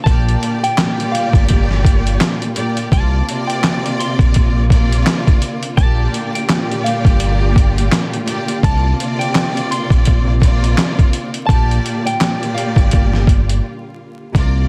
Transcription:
Already playing: D3 A#3
0.04 A#1 A#2 G3 A#3 F4 A5, kick, closed hi-hat
0.08 G4 D5
0.29 closed hi-hat
0.43 closed hi-hat
0.64 G5, closed hi-hat
0.77 A#2 A#3 G4 D5, finger snap, snare, clap, closed hi-hat
1.00 closed hi-hat
1.12 F5, closed hi-hat
1.33 G1, kick, closed hi-hat
1.48 kick, closed hi-hat
1.71 snare
1.85 kick, closed hi-hat
2.07 closed hi-hat
2.20 finger snap, snare, clap, closed hi-hat
2.42 closed hi-hat
2.55 A#2 A#3 G4 D5, closed hi-hat
2.77 closed hi-hat
2.92 C2 C3 D3 A#3 C4 F4 D5 A5, kick, closed hi-hat
3.29 C3 A#3 F4 D5, closed hi-hat
3.47 G5, closed hi-hat
3.63 finger snap, snare, clap, closed hi-hat
3.86 closed hi-hat
4.00 C6, closed hi-hat
4.19 A#1, kick, closed hi-hat
4.34 kick, closed hi-hat
4.70 C3 A#3 F4 D5, kick, closed hi-hat
4.92 closed hi-hat
5.06 finger snap, snare, clap, closed hi-hat
5.27 kick, closed hi-hat
5.42 closed hi-hat
5.63 closed hi-hat
5.77 A#1 A#2 G3 A#3 G4 D5 A5, kick, closed hi-hat
6.14 closed hi-hat
6.35 G5, closed hi-hat
6.49 A#2 A#3 G4 D5, finger snap, snare, clap, closed hi-hat
6.71 closed hi-hat
6.84 F5, closed hi-hat
7.05 G1, kick, closed hi-hat
7.20 closed hi-hat
7.56 kick, closed hi-hat
7.78 closed hi-hat
7.92 finger snap, snare, clap, closed hi-hat
8.13 closed hi-hat
8.27 A#2 A#3 G4 D5, closed hi-hat
8.48 closed hi-hat
8.62 C2 C3 A#3 C4 F4 D5 A5, kick, closed hi-hat
9.00 C3 A#3 F4 D5, closed hi-hat
9.19 G5, closed hi-hat
9.35 finger snap, snare, clap, closed hi-hat
9.57 closed hi-hat
9.71 C6, closed hi-hat
9.90 A#1, kick, closed hi-hat
10.05 kick, closed hi-hat
10.42 C3 A#3 F4 D5, kick, closed hi-hat
10.64 closed hi-hat
10.77 finger snap, snare, clap, closed hi-hat
10.99 kick, closed hi-hat
11.13 closed hi-hat
11.34 closed hi-hat
11.47 A#1 A#2 G3 A#3 F4 A5, kick, closed hi-hat
11.51 G4 D5
11.71 closed hi-hat
11.86 closed hi-hat
12.06 G5, closed hi-hat
12.20 A#2 A#3 G4 D5, finger snap, snare, clap, closed hi-hat
12.43 closed hi-hat
12.54 F5, closed hi-hat
12.76 G1, kick, closed hi-hat
12.91 kick, closed hi-hat
13.14 snare
13.27 kick, closed hi-hat
13.49 closed hi-hat
14.35 C2 C3 A#3 F4 D5, kick, closed hi-hat

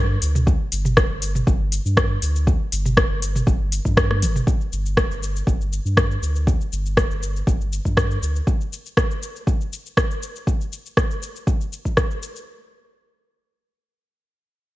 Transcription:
Already playing: G2
0.22 D2, open hi-hat, shaker
0.35 mid tom, shaker
0.47 kick, shaker
0.72 G1, open hi-hat, shaker
0.85 mid tom, shaker
0.97 kick, cross-stick, shaker
1.10 G1
1.22 open hi-hat, shaker
1.35 mid tom, shaker
1.47 G1, kick, shaker
1.72 open hi-hat, shaker
1.85 G2, shaker
1.97 kick, cross-stick, shaker
2.22 D2, open hi-hat, shaker
2.36 shaker
2.47 kick, shaker
2.72 G1, open hi-hat, shaker
2.85 mid tom, shaker
2.97 kick, cross-stick, shaker
3.10 G1
3.22 open hi-hat, shaker
3.36 mid tom, shaker
3.47 G1, kick, shaker
3.72 open hi-hat, shaker
3.85 G2, kick, shaker
3.97 kick, cross-stick, shaker
4.11 cross-stick, high tom
4.22 G1, open hi-hat, mid tom, shaker
4.36 mid tom, shaker
4.47 kick, shaker
4.61 shaker
4.72 G1, shaker
4.86 shaker
4.97 kick, cross-stick, shaker
5.10 G1, shaker
5.23 shaker
5.36 shaker
5.47 G1, kick, shaker
5.61 shaker
5.73 shaker
5.85 G2, shaker
5.97 kick, cross-stick, shaker
6.11 shaker
6.22 D2, shaker
6.36 shaker
6.47 kick, shaker
6.61 shaker
6.72 G1, shaker
6.86 shaker
6.97 kick, cross-stick, shaker
7.10 G1, shaker
7.23 shaker
7.36 shaker
7.47 G1, kick, shaker
7.61 shaker
7.73 shaker
7.85 G2, kick, shaker
7.97 kick, cross-stick, shaker
8.11 shaker
8.22 D2, shaker
8.36 shaker
8.47 kick, shaker
8.61 shaker
8.73 shaker
8.86 shaker
8.97 kick, cross-stick, shaker
9.11 shaker
9.23 shaker
9.36 shaker
9.47 kick, shaker
9.61 shaker
9.73 shaker
9.86 shaker
9.97 kick, cross-stick, shaker
10.11 shaker
10.23 shaker
10.36 shaker
10.47 kick, shaker
10.61 shaker
10.73 shaker
10.86 shaker
10.97 kick, cross-stick, shaker
11.11 shaker
11.23 shaker
11.36 shaker
11.47 kick, shaker
11.61 shaker
11.73 shaker
11.85 kick, shaker
11.97 kick, cross-stick, shaker
12.11 shaker
12.23 shaker
12.36 shaker

